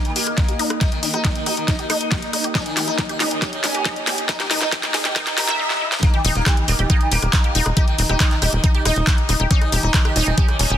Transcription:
Already playing: A#3 A#4 D#5 D#6
0.05 D#3, closed hi-hat
0.16 A#3 G4, open hi-hat
0.27 cross-stick, closed hi-hat
0.38 D#4, kick, snare, closed hi-hat
0.48 G4, closed hi-hat
0.59 D#4, open hi-hat
0.70 cross-stick, closed hi-hat
0.81 D#4 G4, kick, snare, closed hi-hat
0.92 D#3, closed hi-hat
1.03 D#3 D#4, open hi-hat
1.14 D#4 G4, cross-stick, closed hi-hat
1.25 D#3 D#4, kick, snare, closed hi-hat
1.35 D#3, closed hi-hat
1.46 D#4 G4, cross-stick, open hi-hat
1.57 D#3, closed hi-hat
1.68 D#4, kick, snare, closed hi-hat
1.79 D#3 G4, closed hi-hat
1.90 D#4, cross-stick, open hi-hat
2.01 closed hi-hat
2.12 G4, kick, snare, closed hi-hat
2.22 closed hi-hat
2.33 D#4, cross-stick, open hi-hat
2.44 G4, closed hi-hat
2.55 C#4 D#4, kick, snare, closed hi-hat
2.66 D#3, closed hi-hat
2.77 D#3 G4, snare, open hi-hat
2.88 D#4, closed hi-hat
2.98 D#3 D#4, kick, snare, closed hi-hat
3.09 D#3 G4, closed hi-hat
3.20 C#4 D#4, snare, open hi-hat
3.31 D#3, closed hi-hat
3.42 C#4 G4, kick, snare, closed hi-hat
3.53 D#3, closed hi-hat
3.64 C#4 D#4, snare, open hi-hat
3.75 G4, closed hi-hat
3.85 D#4, kick, snare, closed hi-hat
3.96 closed hi-hat
4.07 G4, snare, open hi-hat
4.18 closed hi-hat
4.29 D#4, kick, snare, closed hi-hat
4.40 D#3 G4, snare, closed hi-hat
4.51 D#3 D#4, snare, open hi-hat
4.62 D#4, snare, closed hi-hat
4.72 D#3 G4, kick, snare, closed hi-hat
4.83 D#3, snare, closed hi-hat
4.94 D#4 G#4, snare, open hi-hat
5.05 D#3 G4, snare, closed hi-hat
5.16 D#4 A#4, kick, snare, closed hi-hat, swell
5.27 D#3, snare, closed hi-hat
5.38 G4 A#4, snare, open hi-hat
5.48 E5, snare, closed hi-hat
5.59 D#4
5.70 snare
5.81 E4, mid tom
5.92 snare
6.03 A#3 D#4, kick, cross-stick, closed hi-hat
6.14 D#3 G4, closed hi-hat
6.25 D#1 D#3 D#4, open hi-hat
6.35 D#1 A#3, closed hi-hat
6.46 D#3 G4, kick, cross-stick, clap, closed hi-hat
6.57 D#3, closed hi-hat
6.68 D#1 A#3 D#4, open hi-hat
6.79 D#1 D#3 G4, closed hi-hat
6.90 A#3 D#4, kick, cross-stick, closed hi-hat
7.01 D#3, closed hi-hat
7.12 D#1 A#3 G4, open hi-hat
7.22 D#1, cross-stick, closed hi-hat
7.33 D#4, kick, clap, closed hi-hat
7.44 G4, closed hi-hat
7.55 D#1 D#4, open hi-hat
7.66 D#1, cross-stick, closed hi-hat
7.77 D#4 G4, kick, closed hi-hat
7.88 D#3, closed hi-hat
7.98 D#1 D#3 D#4, open hi-hat
8.09 D#1 D#4 G4, cross-stick, closed hi-hat
8.20 D#3 D#4, kick, clap, closed hi-hat
8.31 D#3, clap, closed hi-hat
8.42 D#1 D#4 G4, cross-stick, open hi-hat
8.53 D#1 D#3, closed hi-hat
8.64 D#4, kick, closed hi-hat
8.75 D#3 G4, closed hi-hat
8.85 D#1 D#4, cross-stick, open hi-hat
8.96 D#1, closed hi-hat
9.07 G4, kick, clap, closed hi-hat
9.18 closed hi-hat
9.29 D#1 D#4, cross-stick, open hi-hat
9.40 D#1 G4, closed hi-hat
9.51 C#4 D#4, kick, closed hi-hat
9.62 D#3, cross-stick, closed hi-hat
9.72 D#1 D#3 G4, open hi-hat
9.83 D#1 D#4, closed hi-hat
9.94 D#3 D#4, kick, clap, closed hi-hat
10.05 D#3 G4, cross-stick, closed hi-hat
10.16 D#1 C#4 D#4, open hi-hat
10.27 D#1 D#3, closed hi-hat
10.38 C#4 G4, kick, closed hi-hat
10.48 D#3, cross-stick, closed hi-hat
10.59 D#1 C#4 D#4, open hi-hat
10.70 D#1 G4, closed hi-hat

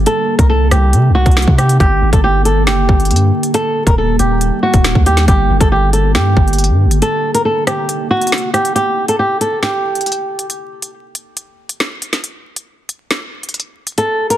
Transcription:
Already playing: A#3
0.06 C3 D#4 A4, closed hi-hat
0.39 C2 A#4, kick, closed hi-hat
0.49 A4
0.71 C2 G4, cross-stick, closed hi-hat
0.93 C3, closed hi-hat
1.09 C2
1.15 F#4
1.26 C2, kick, closed hi-hat
1.31 closed hi-hat
1.37 snare, closed hi-hat
1.42 closed hi-hat
1.48 C3, kick
1.58 G4, cross-stick, closed hi-hat
1.69 closed hi-hat
1.80 G1 D3 G4, kick, closed hi-hat
2.02 G1
2.13 G1 A4, kick, closed hi-hat
2.24 G4
2.45 A4, closed hi-hat
2.67 F#1 G4, snare, closed hi-hat
2.89 G1, kick
3.00 closed hi-hat
3.05 closed hi-hat
3.11 G2, closed hi-hat
3.16 closed hi-hat
3.43 closed hi-hat
3.54 D#3 G3 A4, closed hi-hat
3.87 D#1 A#4, kick, closed hi-hat
3.98 A4
4.19 D#1 G4, closed hi-hat
4.41 closed hi-hat
4.63 F#4
4.74 D#1, kick, closed hi-hat
4.84 snare, closed hi-hat
4.95 D#2, kick
5.06 G4, closed hi-hat
5.17 snare, closed hi-hat
5.28 G1 D3 G4, kick, closed hi-hat
5.50 F#1
5.61 G1 A4, kick, closed hi-hat
5.72 G4
5.93 A4, closed hi-hat
6.15 G2 G4, snare, closed hi-hat
6.37 G1, kick
6.48 closed hi-hat
6.53 closed hi-hat
6.58 closed hi-hat
6.64 closed hi-hat
6.69 G2
6.86 G1
6.91 closed hi-hat
7.02 C3 A#3 D#4 A4, closed hi-hat
7.34 A#4, closed hi-hat
7.45 A4
7.67 G4, cross-stick, closed hi-hat
7.89 closed hi-hat
8.11 F#4
8.22 closed hi-hat
8.27 closed hi-hat
8.32 snare, closed hi-hat
8.38 closed hi-hat
8.54 G4, cross-stick, closed hi-hat
8.65 closed hi-hat
8.75 G4, closed hi-hat
9.08 A4, closed hi-hat
9.19 G4
9.41 A4, closed hi-hat
9.62 G4, snare, closed hi-hat
9.95 closed hi-hat
10.01 closed hi-hat
10.06 closed hi-hat
10.12 closed hi-hat
10.39 closed hi-hat
10.50 closed hi-hat
10.82 closed hi-hat
11.15 closed hi-hat
11.37 closed hi-hat
11.69 closed hi-hat
11.80 snare, closed hi-hat
12.02 closed hi-hat
12.13 snare, closed hi-hat
12.24 closed hi-hat
12.56 closed hi-hat
12.89 closed hi-hat
13.11 snare, closed hi-hat
13.43 closed hi-hat
13.49 closed hi-hat
13.54 closed hi-hat
13.60 closed hi-hat
13.87 closed hi-hat
13.98 A4, closed hi-hat
14.30 A#4, closed hi-hat

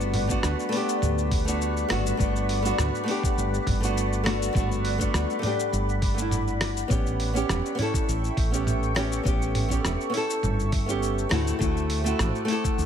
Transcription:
Already playing: G1 G3 A3 B3 D4 F#4 D5 F#5 B5
0.01 shaker
0.14 mid tom, open hi-hat
0.27 A3 B3 D4 F#4, kick, shaker
0.43 D2, cross-stick, shaker
0.59 shaker
0.69 A3 B3, open hi-hat
0.74 D4 G4
0.89 shaker
1.02 D2, mid tom, shaker
1.18 shaker
1.31 kick, open hi-hat
1.45 A3 B3 D4 F#4, shaker
1.61 shaker
1.77 shaker
1.88 G1 A3 B3 D4 F#4, cross-stick, mid tom, open hi-hat
2.06 shaker
2.17 G1 A3 B3 D4, kick, shaker
2.21 F#4
2.36 shaker
2.49 open hi-hat
2.62 A3 B3 D4 F#4, shaker
2.78 D2, cross-stick, mid tom, shaker
2.95 shaker
3.04 A3 B3
3.08 D4 G4, open hi-hat
3.24 kick, shaker
3.37 G1, shaker
3.54 shaker
3.67 G1, kick, mid tom, open hi-hat
3.80 A3 B3 D4, shaker
3.84 F#4
3.97 shaker
4.13 shaker
4.24 A3 B3 D4, cross-stick, open hi-hat
4.28 F#4
4.42 shaker
4.53 G1 A3 B3 D4, kick, mid tom, shaker
4.57 F#4
4.72 shaker
4.85 open hi-hat
4.98 A3 B3 D4 F#4, kick, shaker
5.14 D2, cross-stick, shaker
5.30 shaker
5.39 A3 B3
5.43 D4 G4, mid tom, open hi-hat
5.60 shaker
5.72 G1, shaker
5.89 shaker
6.02 kick, open hi-hat
6.14 A3 B3, shaker
6.19 D4 E4
6.31 mid tom, shaker
6.48 shaker
6.61 cross-stick, open hi-hat
6.77 shaker
6.88 A1 B3 C#4 G4 A4 E5 G5 C#6, kick, mid tom, shaker
7.06 shaker
7.20 open hi-hat
7.33 B3 C#4 G4, shaker
7.49 E1, cross-stick, shaker
7.66 shaker
7.75 B3 C#4, mid tom, open hi-hat
7.80 E4 A4
7.94 kick, shaker
8.08 A1, shaker
8.24 shaker
8.37 A1, kick, open hi-hat
8.51 B3 C#4 G4, shaker
8.67 mid tom, shaker
8.83 shaker
8.95 B3 C#4 G4, cross-stick, open hi-hat
9.12 shaker
9.23 A1 B3 C#4, kick, shaker
9.28 G4
9.42 shaker
9.55 mid tom, open hi-hat
9.69 B3 C#4 G4, kick, shaker
9.85 E1, cross-stick, shaker
10.01 shaker
10.10 B3 C#4
10.14 E4 A4, open hi-hat
10.30 shaker
10.43 G1, mid tom, shaker
10.60 shaker
10.72 kick, open hi-hat
10.86 B3 C#4 G4, shaker
11.03 shaker
11.18 shaker
11.29 D2 A3 C4 E4 F#4 C5 F#5 D6, cross-stick, mid tom, open hi-hat
11.47 shaker
11.59 D2 A3 C4 E4 F#4, kick, shaker
11.77 shaker
11.90 open hi-hat
12.04 A3 C4 E4 F#4, shaker
12.19 A1, cross-stick, mid tom, shaker
12.35 shaker
12.45 A3 C4, open hi-hat
12.50 E4 A4
12.64 kick, shaker
12.78 D2, shaker

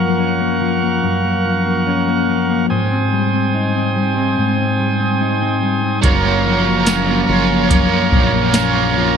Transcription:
Already playing: F#2 F3 A#4 F5 F#5 C#6
0.00 A#3
0.20 C#4
0.40 A#3
0.61 F3
0.82 A#3
1.03 F#2
1.25 A#3
1.46 F3
1.66 A#3
1.87 C#4
2.08 A#3
2.29 F3
2.49 A#3
2.70 G#2 C5 G5 G#5 D#6
2.92 C4
3.12 G3
3.34 C4
3.55 D#4
3.75 C4
3.96 G3
4.17 C4
4.38 G#2
4.59 C4
4.79 G3
5.00 C4
5.21 D#4
5.42 C4
5.63 G3
5.84 C4
6.02 F#1 F#2 F#3 A#3 C#4 F4 A#4 C#5 F5 A#5 C#6, kick, closed hi-hat
6.25 A#3
6.45 F3
6.67 A#3
6.87 C#4, snare, closed hi-hat, tambourine
7.08 A#3
7.27 F#1 F3 C#4 F4 C#5
7.50 A#3
7.69 F#2 A#3 C#4 F4 C#5, kick, closed hi-hat
7.92 A#3
8.12 A#1 F3, kick
8.34 A#3
8.52 A#3 C#4 F4 C#5, snare, closed hi-hat, tambourine
8.76 A#3
8.96 F3

